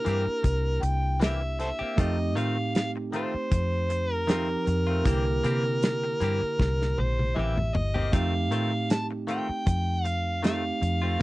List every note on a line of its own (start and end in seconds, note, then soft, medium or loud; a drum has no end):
0.00 1.94 A#3 medium
0.00 1.94 D4 medium
0.00 1.95 E4 medium
0.00 1.95 G4 medium
0.00 0.85 A#4 medium
0.05 0.25 G2 medium
0.05 0.26 E3 medium
0.05 0.26 A#3 medium
0.05 0.25 C4 medium
0.05 0.24 G4 medium
0.05 closed hi-hat medium
0.26 muted clean electric guitar stroke soft
0.26 muted fingered electric bass stroke soft
0.43 0.79 C2 medium
0.43 muted clean electric guitar stroke soft
0.43 kick medium
0.43 closed hi-hat medium
0.82 1.71 C2 medium
0.82 1.22 G5 medium
0.82 muted clean electric guitar stroke soft
0.82 closed hi-hat medium
1.20 1.41 E3 medium
1.20 1.42 A#3 medium
1.20 1.41 C4 medium
1.20 1.40 G4 medium
1.20 1.57 E5 medium
1.20 snare loud
1.20 closed hi-hat medium
1.41 muted clean electric guitar stroke soft
1.59 1.69 A4 medium
1.59 1.69 C5 medium
1.59 2.00 E5 medium
1.59 muted clean electric guitar stroke soft
1.59 closed hi-hat medium
1.79 1.98 A#3 soft
1.79 1.98 C4 soft
1.79 1.97 G4 medium
1.79 muted fingered electric bass stroke soft
1.96 2.36 F2 medium
1.96 2.19 D#3 medium
1.96 4.24 A3 medium
1.96 2.18 A3 medium
1.96 4.24 C4 medium
1.96 2.18 C4 medium
1.96 4.25 D#4 medium
1.96 2.17 F4 medium
1.96 4.26 G4 medium
1.96 2.38 D#5 medium
1.96 kick loud
1.96 closed hi-hat medium
2.18 muted clean electric guitar stroke soft
2.35 3.24 A2 loud
2.35 2.57 D#3 medium
2.35 2.57 A3 medium
2.35 2.57 C4 medium
2.35 2.56 F4 medium
2.35 2.74 F5 medium
2.35 closed hi-hat medium
2.57 muted clean electric guitar stroke soft
2.75 2.91 F5 medium
2.75 snare medium
2.75 closed hi-hat medium
2.96 muted clean electric guitar stroke soft
3.13 3.34 D#3 medium
3.13 3.34 A3 medium
3.13 3.34 C4 medium
3.13 3.33 F4 medium
3.13 4.13 C5 medium
3.13 closed hi-hat medium
3.34 muted clean electric guitar stroke soft
3.34 muted fingered electric bass stroke soft
3.51 4.55 F2 medium
3.51 muted clean electric guitar stroke soft
3.51 kick medium
3.51 closed hi-hat medium
3.90 muted clean electric guitar stroke soft
3.90 closed hi-hat medium
4.13 4.67 A#4 medium
4.27 4.49 D#3 medium
4.27 5.05 F3 medium
4.27 4.50 A3 medium
4.27 5.05 C4 soft
4.27 4.49 C4 medium
4.27 5.06 D#4 medium
4.27 4.48 F4 medium
4.27 5.06 G4 medium
4.27 snare loud
4.27 closed hi-hat medium
4.49 muted clean electric guitar stroke soft
4.67 5.02 F2 medium
4.67 7.01 A#4 loud
4.67 muted clean electric guitar stroke soft
4.67 closed hi-hat medium
4.87 5.05 A3 soft
4.87 5.05 C4 soft
4.87 5.05 F4 medium
5.04 5.40 C2 medium
5.04 8.09 D3 medium
5.04 5.26 E3 medium
5.04 8.08 A#3 medium
5.04 5.27 A#3 medium
5.04 5.26 C4 medium
5.04 8.10 E4 medium
5.04 5.25 G4 medium
5.04 8.10 G4 medium
5.04 kick loud
5.04 closed hi-hat medium
5.26 muted clean electric guitar stroke soft
5.44 6.13 C3 medium
5.44 5.65 E3 medium
5.44 5.65 A#3 medium
5.44 5.64 C4 medium
5.44 5.63 G4 medium
5.44 closed hi-hat medium
5.65 muted clean electric guitar stroke soft
5.82 snare loud
5.82 closed hi-hat medium
6.04 muted clean electric guitar stroke soft
6.20 6.40 G2 medium
6.20 6.42 E3 medium
6.20 6.42 A#3 medium
6.20 6.42 C4 medium
6.20 6.41 G4 medium
6.20 closed hi-hat medium
6.42 muted clean electric guitar stroke soft
6.42 muted fingered electric bass stroke soft
6.59 6.94 C2 medium
6.59 muted clean electric guitar stroke soft
6.59 kick medium
6.59 snare medium
6.82 snare soft
6.98 7.33 A#1 medium
6.98 7.38 C5 medium
6.98 muted clean electric guitar stroke soft
6.98 high tom medium
7.19 high tom medium
7.36 7.71 A1 medium
7.36 7.57 E3 medium
7.36 7.58 A#3 soft
7.36 7.57 C4 medium
7.36 7.56 G4 medium
7.36 7.76 E5 medium
7.36 mid tom medium
7.57 mid tom medium
7.74 8.09 G1 medium
7.74 8.15 D#5 medium
7.74 muted clean electric guitar stroke soft
7.74 floor tom medium
7.94 8.13 A#3 soft
7.94 8.13 C4 soft
7.94 8.13 G4 medium
7.94 floor tom medium
8.12 8.52 F2 medium
8.12 8.34 D#3 medium
8.12 10.39 A3 medium
8.12 8.34 A3 medium
8.12 10.40 C4 medium
8.12 8.34 C4 medium
8.12 10.40 D#4 medium
8.12 8.33 F4 medium
8.12 10.41 G4 medium
8.12 8.90 F5 loud
8.12 kick loud
8.12 closed hi-hat medium
8.34 muted clean electric guitar stroke soft
8.51 9.39 A2 medium
8.51 8.72 D#3 medium
8.51 8.73 A3 medium
8.51 8.72 C4 medium
8.51 8.71 F4 medium
8.51 closed hi-hat medium
8.72 muted clean electric guitar stroke soft
8.90 9.06 A5 medium
8.90 snare loud
8.90 closed hi-hat medium
9.11 muted clean electric guitar stroke soft
9.27 9.49 D#3 medium
9.27 9.49 A3 medium
9.27 9.48 C4 medium
9.27 9.48 F4 medium
9.27 10.06 G5 loud
9.27 closed hi-hat medium
9.49 muted clean electric guitar stroke soft
9.49 muted fingered electric bass stroke soft
9.66 10.70 F2 medium
9.66 muted clean electric guitar stroke soft
9.66 kick medium
9.66 closed hi-hat medium
10.05 10.40 F5 loud
10.05 muted clean electric guitar stroke soft
10.05 closed hi-hat medium
10.43 10.64 D#3 medium
10.43 11.20 A3 soft
10.43 10.64 A3 medium
10.43 11.21 C4 soft
10.43 10.64 C4 medium
10.43 11.21 D#4 soft
10.43 10.63 F4 medium
10.43 11.21 G4 soft
10.43 11.17 F5 loud
10.43 snare medium
10.43 closed hi-hat medium
10.64 muted clean electric guitar stroke soft
10.81 11.17 F2 medium
10.81 muted clean electric guitar stroke soft
10.81 closed hi-hat medium
11.02 11.20 A3 soft
11.02 11.20 C4 soft
11.02 11.20 F4 medium
11.19 11.22 A#3 medium